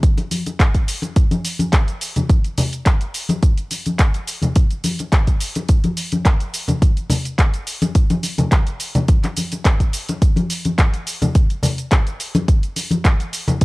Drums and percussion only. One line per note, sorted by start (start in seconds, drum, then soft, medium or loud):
0.03 kick loud
0.03 closed hi-hat medium
0.03 shaker soft
0.18 closed hi-hat soft
0.18 muted conga medium
0.18 shaker soft
0.31 open hi-hat loud
0.31 high conga medium
0.31 shaker medium
0.46 closed hi-hat soft
0.46 muted conga medium
0.46 shaker soft
0.60 kick loud
0.60 clap loud
0.60 closed hi-hat medium
0.60 shaker soft
0.74 kick medium
0.74 closed hi-hat soft
0.74 shaker soft
0.88 open hi-hat loud
0.88 shaker medium
1.02 closed hi-hat soft
1.02 muted conga medium
1.02 shaker soft
1.16 kick loud
1.16 closed hi-hat medium
1.16 shaker soft
1.31 closed hi-hat soft
1.31 high conga medium
1.31 shaker soft
1.45 open hi-hat loud
1.45 shaker medium
1.59 closed hi-hat soft
1.59 high conga medium
1.59 shaker soft
1.73 kick loud
1.73 clap loud
1.73 closed hi-hat medium
1.73 shaker soft
1.88 closed hi-hat soft
1.88 shaker soft
2.01 open hi-hat loud
2.01 shaker medium
2.16 closed hi-hat soft
2.16 high conga medium
2.16 low conga medium
2.16 shaker soft
2.30 kick loud
2.30 closed hi-hat medium
2.30 shaker soft
2.44 closed hi-hat soft
2.44 shaker soft
2.58 open hi-hat loud
2.58 muted conga medium
2.58 low conga medium
2.58 shaker medium
2.73 closed hi-hat soft
2.73 shaker soft
2.86 kick loud
2.86 clap loud
2.86 closed hi-hat medium
2.86 shaker soft
3.01 closed hi-hat soft
3.01 shaker soft
3.14 open hi-hat loud
3.14 shaker medium
3.29 closed hi-hat soft
3.29 muted conga medium
3.29 high conga medium
3.29 shaker soft
3.43 kick loud
3.43 closed hi-hat medium
3.43 shaker soft
3.58 closed hi-hat soft
3.58 shaker soft
3.71 open hi-hat loud
3.71 muted conga soft
3.71 shaker medium
3.86 closed hi-hat soft
3.86 high conga medium
3.86 shaker soft
3.99 kick loud
3.99 clap loud
3.99 closed hi-hat medium
3.99 shaker soft
4.14 closed hi-hat soft
4.14 shaker soft
4.27 open hi-hat medium
4.27 shaker medium
4.42 closed hi-hat soft
4.42 high conga medium
4.42 low conga medium
4.42 shaker soft
4.56 kick loud
4.56 closed hi-hat medium
4.56 shaker soft
4.70 closed hi-hat soft
4.70 shaker soft
4.84 open hi-hat loud
4.84 high conga medium
4.84 shaker medium
4.99 closed hi-hat soft
4.99 muted conga medium
4.99 shaker soft
5.12 kick loud
5.12 clap loud
5.12 closed hi-hat medium
5.12 shaker soft
5.27 kick medium
5.27 closed hi-hat soft
5.27 shaker soft
5.40 open hi-hat medium
5.40 shaker medium
5.55 closed hi-hat soft
5.55 muted conga medium
5.55 shaker soft
5.69 kick loud
5.69 closed hi-hat medium
5.69 shaker soft
5.84 closed hi-hat soft
5.84 high conga medium
5.84 shaker soft
5.97 open hi-hat loud
5.97 shaker medium
6.12 closed hi-hat soft
6.12 high conga medium
6.12 shaker soft
6.25 kick loud
6.25 clap loud
6.25 closed hi-hat medium
6.25 shaker soft
6.40 closed hi-hat soft
6.40 shaker soft
6.54 open hi-hat medium
6.54 shaker medium
6.68 closed hi-hat soft
6.68 high conga medium
6.68 low conga medium
6.68 shaker soft
6.82 kick loud
6.82 closed hi-hat medium
6.82 shaker soft
6.97 closed hi-hat soft
6.97 shaker soft
7.10 open hi-hat loud
7.10 muted conga medium
7.10 low conga medium
7.10 shaker medium
7.25 closed hi-hat soft
7.25 shaker soft
7.39 kick loud
7.39 clap loud
7.39 closed hi-hat medium
7.39 shaker soft
7.54 closed hi-hat soft
7.54 shaker soft
7.67 open hi-hat medium
7.67 shaker medium
7.82 closed hi-hat soft
7.82 muted conga medium
7.82 high conga medium
7.82 shaker soft
7.95 kick loud
7.95 closed hi-hat medium
7.95 shaker soft
8.10 closed hi-hat soft
8.10 high conga medium
8.10 shaker soft
8.23 open hi-hat loud
8.23 muted conga soft
8.23 shaker medium
8.38 closed hi-hat soft
8.38 high conga medium
8.38 low conga medium
8.38 shaker soft
8.52 kick loud
8.52 clap loud
8.52 closed hi-hat medium
8.52 shaker soft
8.67 closed hi-hat soft
8.67 shaker soft
8.80 open hi-hat medium
8.80 shaker medium
8.95 closed hi-hat soft
8.95 high conga medium
8.95 low conga medium
8.95 shaker soft
9.08 kick loud
9.08 closed hi-hat medium
9.08 shaker soft
9.24 clap soft
9.24 closed hi-hat soft
9.24 muted conga medium
9.24 shaker soft
9.37 open hi-hat loud
9.37 high conga medium
9.37 shaker medium
9.52 closed hi-hat soft
9.52 muted conga medium
9.52 shaker soft
9.65 kick loud
9.65 clap loud
9.65 closed hi-hat medium
9.65 shaker soft
9.80 kick medium
9.80 closed hi-hat soft
9.80 shaker soft
9.93 open hi-hat medium
9.93 shaker medium
10.09 closed hi-hat soft
10.09 muted conga medium
10.09 shaker soft
10.22 kick loud
10.22 closed hi-hat medium
10.22 shaker soft
10.36 closed hi-hat soft
10.36 high conga medium
10.36 shaker soft
10.50 open hi-hat loud
10.50 shaker medium
10.65 closed hi-hat soft
10.65 high conga medium
10.65 shaker soft
10.78 kick loud
10.78 clap loud
10.78 closed hi-hat medium
10.78 shaker soft
10.94 closed hi-hat soft
10.94 shaker soft
11.07 open hi-hat medium
11.07 shaker medium
11.22 closed hi-hat soft
11.22 high conga medium
11.22 low conga medium
11.22 shaker soft
11.35 kick loud
11.35 closed hi-hat medium
11.35 shaker soft
11.50 closed hi-hat soft
11.50 shaker soft
11.63 open hi-hat loud
11.63 muted conga medium
11.63 low conga medium
11.63 shaker medium
11.78 closed hi-hat soft
11.78 shaker soft
11.92 kick loud
11.92 clap loud
11.92 closed hi-hat medium
11.92 shaker soft
12.07 closed hi-hat soft
12.07 shaker soft
12.20 open hi-hat medium
12.20 shaker medium
12.35 closed hi-hat soft
12.35 muted conga medium
12.35 high conga loud
12.35 shaker soft
12.48 kick loud
12.48 closed hi-hat medium
12.48 shaker soft
12.63 closed hi-hat soft
12.63 shaker soft
12.76 open hi-hat loud
12.76 muted conga soft
12.76 shaker medium
12.91 closed hi-hat soft
12.91 high conga medium
12.91 shaker soft
13.05 kick loud
13.05 clap loud
13.05 closed hi-hat medium
13.05 shaker soft
13.20 closed hi-hat soft
13.20 shaker soft
13.33 open hi-hat loud
13.33 shaker medium
13.48 closed hi-hat soft
13.48 high conga medium
13.48 low conga medium
13.48 shaker soft
13.61 kick loud
13.61 closed hi-hat medium
13.61 shaker soft